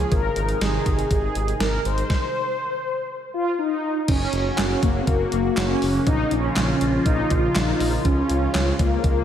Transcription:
Already playing: G#4
0.12 G#1 C3 D#3 G#3 D#4 A#4, kick, closed hi-hat
0.36 G#1, closed hi-hat
0.49 closed hi-hat
0.61 G#1 G#4, snare, closed hi-hat
0.86 G#1, kick, closed hi-hat
0.99 closed hi-hat
1.11 G#1 G#4, kick, closed hi-hat
1.35 G#1, closed hi-hat
1.48 closed hi-hat
1.60 G#1 A#4, snare, closed hi-hat
1.85 G#1 C5, closed hi-hat
1.98 closed hi-hat
2.10 kick, snare
3.34 F4
3.59 D#4
4.08 F#1 C#3 F#3 A#3 C#4 F#4, kick, closed hi-hat, crash
4.33 F#1, closed hi-hat
4.58 F#1, snare, clap, closed hi-hat
4.83 F#1 A#3, kick, closed hi-hat
5.01 C4
5.07 F#1 A#3, kick, closed hi-hat
5.32 F#1, closed hi-hat
5.57 F#1 C#4, snare, clap, closed hi-hat
5.82 F#1, open hi-hat
6.07 A#1 F3 D#4 F4, kick, closed hi-hat
6.31 A#1 C#4, closed hi-hat
6.56 A#1, snare, clap, closed hi-hat
6.81 A#1, closed hi-hat
7.06 A#1 D#4, kick, closed hi-hat
7.30 A#1 F4, kick, closed hi-hat
7.55 A#1 D#4, snare, clap, closed hi-hat
7.80 A#1, open hi-hat
8.05 C#2 G#3 C#4, kick, closed hi-hat
8.30 C#2, closed hi-hat
8.55 C#2, snare, clap, closed hi-hat
8.79 C#2 A#3, kick, closed hi-hat
9.04 C#2 A#3, kick, closed hi-hat

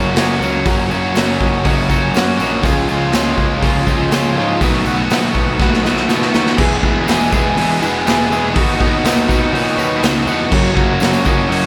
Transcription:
Already playing: F#1 F#2 C#3 F#3 A#3 C#4 F#4 A#4 C#5
0.15 F#1 F#3 A#3 C#4 F#4 A#4 D#5, snare, open hi-hat, tambourine
0.19 F#4
0.40 C#2 F#3 A#3 C#4 F#4 A#4, tambourine
0.45 C#5
0.65 F#1 F#2 C#3 F#3 A#3 C#4 F#4 A#4 C#5, kick, open hi-hat, tambourine
0.90 F#1 F#3 A#3 C#4 F#4 A#4 C#5, tambourine
1.15 F#1 F#3 A#3 C#4 F#4 A#4 C#5, snare, open hi-hat, tambourine
1.40 F#1 F#4 A#4 D#5, kick, tambourine
1.64 F#1 F#2 C#3 F#3 A#3 C#4 F#4 A#4 D#5, kick, open hi-hat
1.89 F#3 A#3 C#4 F#4 A#4 C#5 A#5, kick, tambourine
2.03 G#5
2.14 F#2 F#3 A#3 C#4 F#4 A#4 C#5 F#5, snare, open hi-hat, tambourine
2.37 A#1 A#3 C#4 F#4 A#4, tambourine
2.41 F#3 F#4 D#5
2.62 C#2 C#3 F3 G#3 C#4 F4 G#4 C#5, kick, open hi-hat, tambourine
2.89 C#2 G#3 C#4 F4 G#4 C#5, tambourine
3.12 C#2 F3 G#3 C#4 F4 G#4 C#5, snare, open hi-hat, tambourine
3.37 C#2 F4 G#4 C#5, kick, tambourine
3.62 C#2 C#3 F3 G#3 C#4 F4 G#4 C#5, kick, open hi-hat
3.87 G#3 C#4 F4 G#4 D#5, kick, tambourine
4.11 C#2 F3 G#3 C#4 F4 G#4 C#5, snare, open hi-hat, tambourine
4.35 G#2 C#4 F4 G#4 C#5
4.40 G#3
4.61 B1 B2 D#3 A3 B3 F#4 B4 D#5, kick, open hi-hat, tambourine
4.85 B1 B3 F#4 B4 F#5, tambourine
4.90 A3
5.09 B1 D#3 A3 B3 F#4 B4 D#5, snare, open hi-hat, tambourine
5.14 F#4
5.34 B1 F#4 B4 D#5, kick, tambourine
5.59 B1 B2 D#3 A3 B3 F#4 B4 F#5, kick, snare, tambourine
5.74 snare
5.83 A3 B3 F#4 B4 D#5, snare, tambourine
5.97 snare
6.07 B2 D#3 A3 B3 F#4 B4 D#5, snare, tambourine
6.22 snare
6.32 D#2 A3 B3 F#4 B4 C#5, snare, tambourine
6.47 snare
6.57 E1 E2 B2 E3 G#3 B3 G#4 B4 E5, kick, crash
6.72 tambourine
6.82 E1 E2 B2 E3 G#3 B3 G#4 B4 E5, kick, tambourine
7.06 E1 E2 B2 E3 G#3 B3 G#4 B4 E5, snare, open hi-hat, tambourine
7.21 tambourine
7.31 E1 E2 B2 E3 G#3 B3 G#4 B4 E5, kick, tambourine
7.56 E1 E2 B2 E3 G#3 B3 G#4 B4 E5, open hi-hat
7.81 E1 E2 B2 E3 G#3 B3 G#4 B4 F#5, tambourine
8.06 E1 E2 B2 E3 G#3 B3 G#4 B4 E5, snare, open hi-hat, tambourine
8.30 E1 E2 B2 E3 G#3 B3 G#4 B4 E5, tambourine
8.53 D#2 D#3 B3 D#4 F#4 B4 D#5, kick, open hi-hat
8.69 tambourine
8.79 D#2 D#3 B3 D#4 F#4 B4 D#5, kick, tambourine
9.04 D#2 D#3 B3 D#4 F#4 B4 D#5, snare, open hi-hat, tambourine
9.28 D#2 D#3 B3 D#4 F#4 B4 D#5, kick, tambourine
9.51 A#2 D#3 B3 D#4 F#4 B4 C#5
9.55 F#4, open hi-hat
9.75 D#2 D#3 B3 F#4 B4 C#5, tambourine
9.79 D#4 F#4
9.98 F#4 B4 D#5
10.03 C#2 D#3 B3 D#4 F#4, snare, open hi-hat, tambourine
10.16 tambourine
10.25 E2 D#3 B3 D#4 F#4 B4 F#5, tambourine
10.50 F#1 F#2 C#3 F#3 A#3 C#4 F#4 A#4 C#5, kick, crash
10.65 tambourine
10.74 F#1 F#2 C#3 F#3 A#3 C#4 F#4 A#4, kick, tambourine
10.78 C#5
11.00 F#1 F#2 C#3 F#3 A#3 C#4 F#4 A#4 C#5, snare, open hi-hat, tambourine
11.13 tambourine
11.25 F#1 F#2 C#3 F#3 A#3 C#4 F#4 A#4 D#5, kick, tambourine
11.47 F#1 F#2 C#3 F#3 A#3 F#4 A#4 D#5
11.51 C#4 F#4, open hi-hat

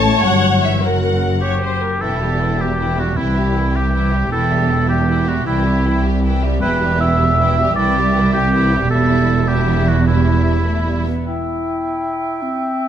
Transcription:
Already playing: A1 A2 A3 C#5 A5
0.24 G1 G2 F#3 F#5
0.64 E3 E5
0.83 F#1 F#2 F#3 A#4 F#5
1.41 G4 C#5
1.62 C5
1.81 A#4
2.01 E1 E2 E3 E4 A4 G5
2.21 G3 G4 E5
2.40 E3 E4 G5
2.60 G3 G4 E5
2.77 E3 E4 G5
2.97 G3 F#4 G4 E5
3.15 C2 E3 E4 G5
3.37 G3 G4 E5
3.55 E3 E4 G5
3.74 G3 G4 E5
3.93 E3 E4 G5
4.12 G3 G4 E5
4.31 E1 E2 E3 E4 A4 G5
4.51 G3 G4 E5
4.69 E3 E4 G5
4.89 G3 G4 E5
5.07 E3 E4 G5
5.27 G3 F#4 G4 E5
5.46 C2 E3 E4 G5
5.65 G3 G4 E5
5.85 E3 E4 G5
6.04 G3 G4 E5
6.23 E3 E4 G5
6.42 G3 G4 E5
6.61 E1 E2 E3 E4 B4 G5
6.82 G3 G4 E5
7.00 E3 E4 E5 G5
7.19 G3 G4 E5
7.38 E3 E4 G5
7.57 G3 E5
7.61 G4
7.76 C2 E3 E4 D5 G5
7.96 G3 G4 E5
8.15 E3 E4 G5
8.33 G3 G4 E5
8.53 E3 E4 G5
8.72 G3 G4 E5
8.90 E1 E2 G3 E4 A4 E5
9.48 G3 E4 G4 E5
9.88 F#4
10.07 G3 E4 E5
10.67 A3
10.86 G3
11.06 B3
11.25 E4 E5 G5
12.42 C4

